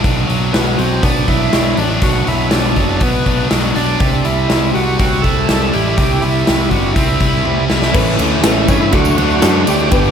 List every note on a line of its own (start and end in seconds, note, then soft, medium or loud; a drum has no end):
0.00 0.51 B2 medium
0.00 0.27 F#3 medium
0.00 1.27 D4 medium
0.04 0.25 B1 medium
0.04 kick loud
0.04 open hi-hat medium
0.27 0.50 B1 medium
0.27 0.77 F#3 medium
0.27 open hi-hat soft
0.53 0.75 B1 medium
0.53 1.77 B2 medium
0.53 0.79 B3 medium
0.53 snare loud
0.53 open hi-hat medium
0.78 0.99 B1 medium
0.78 1.52 F#3 medium
0.78 1.04 C4 medium
0.78 open hi-hat soft
1.03 1.24 B1 medium
1.03 2.27 B3 medium
1.03 1.28 D4 medium
1.03 kick loud
1.03 open hi-hat medium
1.27 1.49 B1 medium
1.27 1.76 D4 medium
1.27 1.79 E4 medium
1.27 kick medium
1.27 open hi-hat soft
1.53 1.73 B1 medium
1.53 2.26 F#3 medium
1.53 snare medium
1.53 open hi-hat medium
1.77 1.98 A1 medium
1.77 3.01 D4 medium
1.77 1.89 D4 medium
1.77 open hi-hat soft
2.01 2.23 B1 medium
2.01 2.50 B2 medium
2.01 2.28 F#4 medium
2.01 kick loud
2.01 open hi-hat medium
2.27 2.48 B1 medium
2.27 2.75 F#3 medium
2.27 2.51 E4 medium
2.27 open hi-hat soft
2.51 2.72 B1 medium
2.51 3.75 B2 medium
2.51 3.03 D4 medium
2.51 snare medium
2.51 open hi-hat medium
2.76 2.97 F#1 medium
2.76 3.48 F#3 medium
2.76 kick medium
2.76 open hi-hat soft
3.00 3.22 B1 medium
3.00 4.00 B3 medium
3.00 3.48 B3 medium
3.00 kick loud
3.00 open hi-hat medium
3.26 3.47 B1 medium
3.26 3.74 D4 medium
3.26 kick medium
3.26 open hi-hat soft
3.50 3.71 B1 medium
3.50 3.99 F#3 medium
3.50 snare loud
3.50 open hi-hat medium
3.75 3.96 B1 medium
3.75 4.00 D4 medium
3.75 4.27 D4 medium
3.75 open hi-hat soft
4.00 4.21 C2 medium
4.00 4.48 C3 medium
4.00 kick loud
4.00 open hi-hat medium
4.24 4.46 C2 medium
4.24 4.73 G3 medium
4.24 4.71 E4 medium
4.24 open hi-hat soft
4.49 4.70 C2 medium
4.49 5.73 C3 medium
4.49 snare medium
4.49 open hi-hat medium
4.74 4.95 C2 medium
4.74 5.47 G3 medium
4.74 4.98 F#4 medium
4.74 open hi-hat soft
4.98 5.20 C2 medium
4.98 6.22 C4 medium
4.98 5.24 F#4 medium
4.98 kick loud
4.98 open hi-hat medium
5.22 5.44 C2 medium
5.22 5.72 E4 medium
5.22 5.74 A4 loud
5.22 kick medium
5.22 open hi-hat soft
5.49 5.70 C2 medium
5.49 6.21 G3 medium
5.49 snare loud
5.49 open hi-hat medium
5.73 5.95 A1 medium
5.73 6.97 E4 medium
5.73 5.98 G4 medium
5.73 open hi-hat soft
5.97 6.18 C2 medium
5.97 6.46 C3 medium
5.97 6.24 G4 medium
5.97 kick loud
5.97 open hi-hat medium
6.22 6.44 C2 medium
6.22 6.70 G3 medium
6.22 6.45 E4 medium
6.22 open hi-hat soft
6.46 6.69 C2 medium
6.46 7.70 C3 medium
6.46 6.69 E4 medium
6.46 snare medium
6.46 open hi-hat medium
6.69 6.92 G1 medium
6.69 7.44 G3 medium
6.69 6.93 F#4 medium
6.69 kick medium
6.69 open hi-hat soft
6.93 7.17 C2 medium
6.93 7.95 C4 medium
6.93 7.65 E4 medium
6.93 kick loud
6.93 open hi-hat medium
7.20 7.42 C2 medium
7.20 7.69 E4 medium
7.20 kick medium
7.20 open hi-hat soft
7.45 7.66 C2 medium
7.45 7.95 G3 medium
7.45 high tom medium
7.70 7.91 C2 medium
7.70 7.95 E4 medium
7.70 snare medium
7.82 snare medium
7.93 8.16 A1 medium
7.93 8.20 A2 loud
7.93 8.20 E3 loud
7.93 8.21 A3 medium
7.93 8.33 C#4 loud
7.93 8.17 C#4 loud
7.93 8.33 E4 loud
7.93 8.17 E4 loud
7.93 8.34 A4 loud
7.93 8.34 B4 loud
7.93 kick loud
7.93 crash loud
7.93 tambourine soft
8.07 tambourine soft
8.17 8.40 D2 medium
8.17 8.40 A2 medium
8.17 8.41 A3 medium
8.17 8.41 C#4 medium
8.17 8.41 E4 medium
8.17 ride medium
8.17 tambourine medium
8.21 8.42 A2 medium
8.21 8.44 E3 medium
8.21 8.44 A3 medium
8.42 8.65 A1 medium
8.42 8.68 A2 medium
8.42 8.68 E3 medium
8.42 8.69 A3 medium
8.42 8.66 C#4 medium
8.42 8.83 C#4 medium
8.42 8.83 E4 medium
8.42 8.66 E4 medium
8.42 8.83 A4 medium
8.42 8.83 B4 loud
8.42 snare loud
8.42 ride loud
8.42 tambourine medium
8.67 8.90 G2 medium
8.67 8.92 A2 medium
8.67 8.92 E3 loud
8.67 8.93 A3 loud
8.67 8.91 C#4 loud
8.67 8.82 C#4 medium
8.67 8.91 E4 loud
8.67 kick medium
8.67 ride medium
8.67 tambourine medium
8.81 8.94 E4 medium
8.90 9.15 D2 loud
8.90 9.17 D3 medium
8.90 9.15 F#3 medium
8.90 9.31 D4 medium
8.90 9.32 E4 medium
8.90 9.32 F#4 medium
8.90 9.63 F#4 loud
8.90 9.32 A4 medium
8.90 kick medium
8.90 ride loud
8.94 9.16 A3 medium
8.94 9.17 D4 loud
9.05 tambourine medium
9.16 9.39 D2 medium
9.16 9.43 D3 medium
9.16 9.40 F#3 loud
9.16 9.43 A3 medium
9.16 9.44 D4 loud
9.16 ride medium
9.30 tambourine soft
9.41 9.64 F#2 medium
9.41 9.66 D3 medium
9.41 9.65 F#3 medium
9.41 9.67 A3 medium
9.41 9.81 D4 medium
9.41 9.67 D4 medium
9.41 9.81 E4 medium
9.41 9.82 F#4 medium
9.41 9.82 A4 medium
9.41 snare loud
9.41 ride loud
9.41 tambourine medium
9.66 9.89 D2 medium
9.66 9.91 D3 medium
9.66 9.90 F#3 medium
9.66 9.91 A3 medium
9.66 9.91 D4 medium
9.66 10.11 G4 loud
9.66 ride medium
9.66 tambourine medium
9.91 10.11 G1 medium
9.91 10.11 G2 loud
9.91 10.11 D3 loud
9.91 10.11 G3 loud
9.91 10.11 B3 medium
9.91 10.11 B3 loud
9.91 10.11 D4 medium
9.91 10.11 D4 loud
9.91 10.11 G4 medium
9.91 10.11 B4 loud
9.91 kick loud
9.91 ride loud
9.91 tambourine soft
10.04 tambourine soft